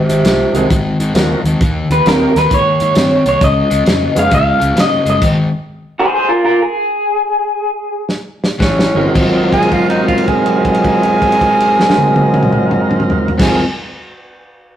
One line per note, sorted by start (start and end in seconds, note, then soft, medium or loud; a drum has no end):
0.00 0.82 C3 loud
0.09 0.19 G#1 medium
0.09 0.23 G#2 medium
0.09 0.23 D#3 medium
0.09 closed hi-hat medium
0.24 0.44 C2 medium
0.24 0.52 G#2 medium
0.24 0.52 F3 medium
0.24 snare loud
0.24 closed hi-hat medium
0.53 0.64 C2 medium
0.53 0.68 G#2 medium
0.53 0.69 D#3 medium
0.53 0.68 A#3 medium
0.53 0.68 C4 medium
0.53 0.68 D#4 medium
0.53 0.68 F#4 medium
0.53 0.68 G#4 medium
0.53 closed hi-hat medium
0.70 0.90 G#1 medium
0.70 0.97 G#2 medium
0.70 0.97 D#3 medium
0.70 kick loud
0.70 closed hi-hat medium
0.99 1.09 G#1 medium
0.99 1.14 G#2 medium
0.99 1.14 D#3 medium
0.99 closed hi-hat medium
1.14 1.34 D#2 medium
1.14 1.42 G#2 medium
1.14 1.42 F3 medium
1.14 1.41 A#3 medium
1.14 1.41 C4 medium
1.14 1.42 D#4 medium
1.14 1.42 F#4 medium
1.14 1.42 A#4 medium
1.14 snare loud
1.14 closed hi-hat medium
1.43 1.54 D#2 medium
1.43 1.59 G#2 medium
1.43 1.59 D#3 medium
1.43 closed hi-hat medium
1.61 1.80 D#2 medium
1.61 1.87 D#3 medium
1.61 1.87 A#3 medium
1.61 kick loud
1.61 closed hi-hat medium
1.89 2.00 D#2 medium
1.89 2.04 D#3 medium
1.89 2.05 A#3 medium
1.89 2.07 B4 medium
1.89 closed hi-hat medium
2.04 2.25 D#2 medium
2.04 2.32 D#3 medium
2.04 2.31 A#3 medium
2.04 2.33 C4 medium
2.04 2.32 C#4 medium
2.04 2.32 D#4 medium
2.04 2.32 F4 medium
2.04 2.33 G4 medium
2.04 snare loud
2.04 closed hi-hat medium
2.08 2.37 A#4 medium
2.35 2.45 D#2 medium
2.35 2.50 D#3 medium
2.35 2.50 A#3 medium
2.35 2.53 B4 medium
2.35 snare soft
2.35 closed hi-hat medium
2.51 2.71 G#2 medium
2.51 2.78 D#3 medium
2.51 2.78 A#3 medium
2.51 3.27 C#5 medium
2.51 kick loud
2.51 closed hi-hat medium
2.80 2.90 G#2 medium
2.80 2.94 D#3 medium
2.80 2.95 A#3 medium
2.80 closed hi-hat medium
2.95 3.16 G2 medium
2.95 3.22 D#3 medium
2.95 3.23 C4 medium
2.95 snare loud
2.95 closed hi-hat medium
3.26 3.36 C2 medium
3.26 3.40 D#3 medium
3.26 3.40 A#3 medium
3.26 3.43 C#5 medium
3.26 closed hi-hat medium
3.41 3.61 C#2 medium
3.41 3.68 C#3 medium
3.41 3.68 G#3 medium
3.41 4.19 D#5 loud
3.41 kick loud
3.41 closed hi-hat medium
3.70 3.81 C#2 medium
3.70 3.84 C#3 medium
3.70 3.85 G#3 medium
3.70 closed hi-hat medium
3.85 4.06 F2 medium
3.85 4.13 C#3 medium
3.85 4.13 A#3 medium
3.85 snare loud
3.85 closed hi-hat medium
4.15 4.26 F2 medium
4.15 4.29 C#3 medium
4.15 4.29 G#3 medium
4.15 4.29 B3 medium
4.15 4.30 C#4 medium
4.15 4.29 D#4 medium
4.15 4.30 F4 medium
4.15 4.30 G#4 medium
4.15 closed hi-hat medium
4.19 4.33 F5 medium
4.30 4.51 C#2 medium
4.30 4.57 C#3 medium
4.30 4.57 G#3 medium
4.30 kick loud
4.30 closed hi-hat medium
4.35 4.79 F5 loud
4.59 4.71 C#2 medium
4.59 4.74 C#3 medium
4.59 4.74 G#3 medium
4.59 closed hi-hat medium
4.75 4.96 G#2 medium
4.75 5.02 C#3 medium
4.75 5.03 A#3 medium
4.75 snare loud
4.75 closed hi-hat medium
4.80 5.09 D#5 medium
5.05 5.22 F#1 medium
5.05 5.20 C#3 medium
5.05 5.20 G#3 medium
5.05 closed hi-hat medium
5.10 5.23 D#5 medium
5.22 5.41 G#1 medium
5.22 5.48 G#2 medium
5.22 5.49 D#3 medium
5.22 kick loud
5.22 closed hi-hat medium
5.22 crash medium
5.99 6.13 G#4 medium
5.99 6.14 C5 medium
6.14 6.28 G#4 medium
6.14 6.29 C5 medium
6.29 6.43 F4 medium
6.29 6.44 A#4 medium
6.44 6.59 F4 medium
6.44 6.62 A#4 medium
6.62 8.04 G#4 medium
8.09 snare medium
8.44 snare medium
8.59 8.84 A1 medium
8.59 8.91 A2 medium
8.59 8.92 E3 medium
8.59 9.05 C#4 medium
8.59 kick medium
8.59 snare medium
8.79 snare medium
8.95 9.08 G1 medium
8.95 9.12 G#2 medium
8.95 9.13 A2 medium
8.95 9.13 E3 medium
8.95 9.00 F#3 medium
8.95 9.07 C4 medium
8.95 9.13 D#4 medium
8.95 9.13 F4 medium
8.95 9.13 A#4 medium
9.02 13.24 F#3 medium
9.08 13.27 C4 medium
9.13 13.26 G#1 medium
9.13 13.29 G#2 medium
9.13 13.30 F#3 medium
9.13 13.31 C4 medium
9.13 13.30 D#4 medium
9.13 13.31 F4 loud
9.13 kick loud
9.13 crash medium
9.20 13.33 F4 medium
9.27 13.36 A#4 medium
9.53 9.74 G#4 loud
9.53 kick medium
9.53 crash soft
9.62 crash soft
9.72 9.89 F4 medium
9.72 kick medium
9.72 crash soft
9.90 10.07 D#4 medium
9.90 crash soft
10.08 10.26 F4 medium
10.08 kick medium
10.08 crash soft
10.18 crash soft
10.28 13.26 G#4 loud
10.28 kick medium
10.28 crash soft
10.46 crash soft
10.65 kick medium
10.65 crash soft
10.74 crash soft
10.84 kick medium
10.84 crash soft
11.03 crash soft
11.22 kick medium
11.22 crash soft
11.32 crash medium
11.41 kick medium
11.41 crash medium
11.60 crash medium
11.80 snare medium
11.90 snare medium
11.98 high tom medium
12.16 high tom medium
12.34 high tom loud
12.43 mid tom loud
12.53 mid tom medium
12.71 mid tom loud
12.91 mid tom loud
13.00 mid tom medium
13.10 floor tom loud
13.25 13.53 F#3 medium
13.25 floor tom loud
13.32 13.57 C4 medium
13.37 13.59 G#1 medium
13.37 13.59 G#2 medium
13.37 13.60 F#3 medium
13.37 13.61 C4 medium
13.37 13.59 D#4 medium
13.37 13.60 G#4 medium
13.37 kick loud
13.37 snare loud
13.37 crash loud
13.42 13.61 F4 loud
13.42 13.63 F4 medium
13.50 13.66 A#4 medium